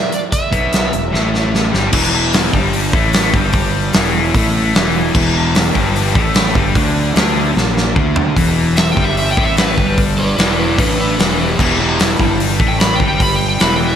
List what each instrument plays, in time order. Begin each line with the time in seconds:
Already playing: electric slide guitar E5
0.12 electric slide guitar D5, closed hi-hat
0.32 electric slide guitar E5, kick, closed hi-hat
0.52 fingered electric bass B1, distorted electric guitar B2 B3, kick, closed hi-hat
0.73 snare, closed hi-hat
0.92 fingered electric bass E1, distorted electric guitar E2, closed hi-hat
1.11 fingered electric bass A1, distorted electric guitar A2 A3, snare
1.35 snare
1.55 snare
1.72 fingered electric bass G1, distorted electric guitar G2 G3, snare
1.92 fingered electric bass E1, distorted electric guitar E2 E3, kick, crash
2.33 snare, open hi-hat
2.52 fingered electric bass G1, distorted electric guitar G2 G3, kick
2.73 open hi-hat
2.93 fingered electric bass A1, distorted electric guitar A2 A3, kick
3.13 snare, open hi-hat
3.34 fingered electric bass G1, distorted electric guitar G2 G3, kick
3.53 kick, open hi-hat
3.93 fingered electric bass E1, distorted electric guitar E2 E3, snare, open hi-hat
4.34 fingered electric bass A1, distorted electric guitar A2 A3, kick, open hi-hat
4.73 fingered electric bass E1, distorted electric guitar E2 E3, snare, open hi-hat
5.14 fingered electric bass E1, distorted electric guitar E2 E3, kick, crash
5.55 snare, open hi-hat
5.74 fingered electric bass G1, distorted electric guitar G2 G3, kick
5.96 open hi-hat
6.15 fingered electric bass A1, distorted electric guitar A2 A3, kick
6.34 snare, open hi-hat
6.55 fingered electric bass G1, distorted electric guitar G2 G3, kick
6.75 fingered electric bass D2, distorted electric guitar D3 D4, kick, open hi-hat
7.15 fingered electric bass D2, distorted electric guitar D3 D4, snare, open hi-hat
7.56 fingered electric bass A#1, distorted electric guitar A#2 A#3, snare
7.77 snare
7.95 fingered electric bass D2, distorted electric guitar D3 D4, kick
8.16 floor tom
8.36 fingered electric bass E1, distorted electric guitar E2 E3, kick, open hi-hat
8.77 electric slide guitar E5, snare, open hi-hat
8.92 distorted electric guitar G2, electric slide guitar G5
8.96 fingered electric bass G1, distorted electric guitar G3, kick
9.05 electric slide guitar E5
9.17 electric slide guitar E5, open hi-hat
9.31 electric slide guitar G5
9.36 fingered electric bass A1, distorted electric guitar A2 A3, kick
9.44 electric slide guitar E5
9.57 electric slide guitar B4, snare, open hi-hat
9.76 fingered electric bass G1, distorted electric guitar G2 G3, kick
9.98 kick, open hi-hat
10.18 electric slide guitar B4 D5
10.37 fingered electric bass E1, distorted electric guitar E2 E3, electric slide guitar B4 D5, snare, open hi-hat
10.59 electric slide guitar B4 D5
10.77 fingered electric bass A1, distorted electric guitar A2 A3, electric slide guitar D4 B4, kick, open hi-hat
11.00 electric slide guitar D4 B4
11.18 fingered electric bass E1, distorted electric guitar E2 E3, electric slide guitar D4 B4, snare, open hi-hat
11.40 electric slide guitar B3 G4
11.58 fingered electric bass E1, distorted electric guitar E2 E3, electric slide guitar B3 G4, kick, crash
11.80 electric slide guitar B3 G4
11.99 electric slide guitar E4, snare, open hi-hat
12.19 fingered electric bass G1, distorted electric guitar G2 G3, kick
12.40 open hi-hat
12.59 fingered electric bass A1, distorted electric guitar A2 A3, kick
12.68 electric slide guitar G5
12.80 electric slide guitar B5, snare, open hi-hat
12.95 distorted electric guitar G2 G3, electric slide guitar G5
13.00 fingered electric bass G1, kick
13.08 electric slide guitar G5
13.20 electric slide guitar B5, kick, open hi-hat
13.35 electric slide guitar G5
13.49 electric slide guitar G5
13.59 fingered electric bass E1, distorted electric guitar E2 E3, electric slide guitar B5, snare, open hi-hat
13.76 electric slide guitar G5
13.89 electric slide guitar E5